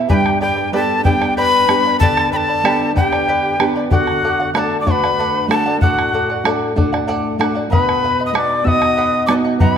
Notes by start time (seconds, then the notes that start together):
0.09 G2 G4 B4 D5 G5 G#5 B5, bombo low
0.14 G5
0.26 bombo rim
0.41 G4 G#4 B4 D5 G5 B5
0.57 B4 D5 B5
0.72 B3 D4 G4 B4 D5 G5 A5 B5
0.76 A4
1.04 B3 D4 G4 G#4 B4 D5 G5 B5, bombo rim, bombo low
1.09 G4
1.21 B4 D5 B5, bombo rim
1.37 G4 B4 D5 G5 B5
1.68 B3 D4 G4 B4 D5 G5 B5, bombo rim
1.86 B4 D5 B5
1.99 D3 G4 A4 B4 D5 G5 A5 B5, bombo low
2.17 bombo rim
2.29 A4 B4 G5 B5
2.34 D5 A5 B5
2.49 B4 D5 B5
2.64 B3 D4 G4 B4 D5 G5 B5, bombo rim
2.94 B3 D4 G4 B4 D5 G5 B5, bombo rim, bombo low
3.12 B4 D5 B5, bombo rim
3.28 G4 B4 D5 G5 B5
3.59 B3 D4 G4 B4 D5 G5 B5, bombo rim
3.76 B4 D5 B5
3.90 D3 F#4 A4 D5 F#5 G5, bombo low
3.95 F#5
4.07 bombo rim
4.24 A4 D5 F#5
4.40 D5 F#5
4.54 A3 D4 F#4 A4 B4 D5 F#5 B5, bombo rim
4.58 A4 A5
4.81 D5 D6
4.85 A3 D4 F#4 A4 C#5 D5 F#5 C#6, bombo rim, bombo low
4.90 B4 B5
5.04 D5 F#5, bombo rim
5.19 A4 D5 F#5
5.48 A3 D4 F#4 A4 D5 F#5 A5, bombo rim
5.66 D5 F#5
5.81 A2 F#4 A4 D5 F#5, bombo low
5.99 bombo rim
6.14 A4 D5 F#5
6.29 D5 F#5, bombo rim
6.44 A3 D4 F#4 A4 D5 F#5, bombo rim
6.76 A3 D4 F#4 A4 D5 F#5, bombo low
6.93 D5 F#5, bombo rim
7.07 A4 D5 F#5, bombo rim
7.38 A3 D4 F#4 A4 D5 F#5, bombo rim
7.55 D5 F#5
7.70 B2 B4 D#5 F#5 B5, bombo low
7.89 bombo rim
8.03 B4 D#5 F#5
8.19 D#5 F#5
8.26 D#5 D#6
8.32 B3 D#4 F#4 B4 D#5 F#5 D6 D#6, bombo rim
8.39 D5
8.64 B3 D#4 F#4 B4 D#5 E5 F#5 E6, bombo rim, bombo low
8.68 D#5 D#6
8.81 D#5 F#5, bombo rim
8.97 B4 D#5 F#5
9.26 B3 D#4 F#4 B4 D5 D#5 F#5 D6, bombo rim
9.45 D#5 F#5
9.60 F#2 B4 D#5 F#5 A#5, bombo low
9.72 B5